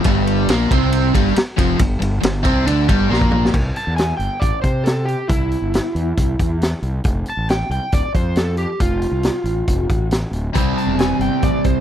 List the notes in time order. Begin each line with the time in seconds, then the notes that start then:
0.04 G1 G2 G3, kick, ride
0.27 ride
0.48 A#1 A#2 A#3, snare, ride
0.71 C2 C3 C4, kick, ride
0.92 ride
1.14 G1 G2 G3, kick, ride
1.27 snare
1.36 muted overdriven electric guitar stroke, snare, ride
1.57 F1 F2 F3, kick, ride
1.78 G1 G2, kick, ride
2.00 G1 G2, ride
2.22 G1 G2, snare, ride
2.43 C2 C3 C4, kick, ride
2.65 D2 D3 D4, ride
2.87 G1 G2 G3, kick, ride
3.09 A#1 A#2 A#3, snare
3.21 kick
3.31 mid tom
3.45 snare
3.54 C2, kick, crash
3.76 A5, closed hi-hat
3.87 E2
3.96 G#5, snare, closed hi-hat
4.17 G1 G5, closed hi-hat
4.40 A1 D5, kick, closed hi-hat
4.62 C3 C5, kick, closed hi-hat
4.84 A4, snare, closed hi-hat
5.05 G4, closed hi-hat
5.28 C2 E4, kick, closed hi-hat
5.51 closed hi-hat
5.62 G1
5.74 snare, closed hi-hat
5.95 E2, closed hi-hat
6.17 C2, kick, closed hi-hat
6.39 E2, kick, closed hi-hat
6.62 snare, closed hi-hat
6.82 C2, closed hi-hat
7.04 F1, kick, closed hi-hat
7.26 A5, closed hi-hat
7.37 A1
7.49 G5, snare, closed hi-hat
7.70 C2 G5, closed hi-hat
7.92 D1 D5, kick, closed hi-hat
8.14 F2 C5, kick, closed hi-hat
8.36 A4, snare, closed hi-hat
8.57 G4, closed hi-hat
8.80 F1 F4, kick, closed hi-hat
9.02 closed hi-hat
9.11 C2
9.23 snare, closed hi-hat
9.44 A1, closed hi-hat
9.68 F1, kick, closed hi-hat
9.89 A1, kick, closed hi-hat
10.11 snare, closed hi-hat
10.31 D1, closed hi-hat
10.53 C2 C3 G3 C4, kick, closed hi-hat
10.78 A5, closed hi-hat
10.86 E1
10.99 G#5, snare, closed hi-hat
11.19 G1 G5, closed hi-hat
11.42 A1 D5, kick, closed hi-hat
11.64 C2 C5, kick, closed hi-hat